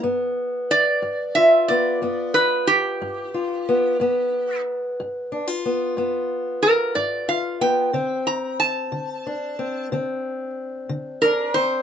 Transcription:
<<
  \new Staff \with { instrumentName = "Resonator guitar played with a steel bar" } { \time 12/8 \key g \mixolydian \tempo 4. = 61 r4 d''4 e''8 d''4 b'8 g'2~ | g'4 r2. bes'8 d''8 f''8 g''8~ | g''8 bes''8 a''2 r2 bes'8 c''8 | }
  \new Staff \with { instrumentName = "Steel-string acoustic guitar" } { \time 12/8 \key g \mixolydian << { b2 f'8 b8 b2 f'8 b8 | b2 d'16 f'16 b8 b2 f'8 b8 | c'2 d'8 c'8 c'2 d'8 c'8 | } \\ { g,4 r8 g,4 r8 g,4 r8 g,4 r8 | g,4 r8 g,4 r8 g,4 r8 g,4 r8 | d4 r8 d4 r8 d4 r8 d4 r8 | } >> }
>>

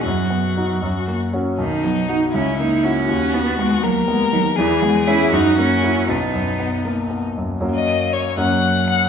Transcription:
<<
  \new Staff \with { instrumentName = "Violin" } { \time 6/8 \key b \major \tempo 4. = 79 fis'2~ fis'16 r8. | dis'4. e'4. | fis'4. ais'4. | gis'4. fis'4. |
dis'2~ dis'16 r8. | \key fis \major r16 dis''8. cis''8 fis''4 fis''8 | }
  \new Staff \with { instrumentName = "Grand piano" } { \time 6/8 \key b \major fis,8 b8 <dis' fis'>8 fis,8 ais8 <cis' fis'>8 | b,,8 b8 <dis' fis'>8 cis,8 ais8 <e' fis'>8 | dis,8 dis8 b8 ais8 b8 dis8 | e,8 b8 <cis' gis'>8 fis,8 ais8 <e' fis'>8 |
b,,8 fis,8 b8 ais8 b8 fis,8 | \key fis \major <fis, ais cis' fis'>4. <fis, ais cis' fis'>4. | }
  \new Staff \with { instrumentName = "Cello" } { \time 6/8 \key b \major fis4. r4. | dis8 fis8 dis'8 cis'8 dis'8 cis'8~ | cis'8 b8 gis8 fis8 gis8 fis8 | e8 gis8 e'8 dis'8 cis'4 |
b4. r4. | \key fis \major ais4. fis4. | }
>>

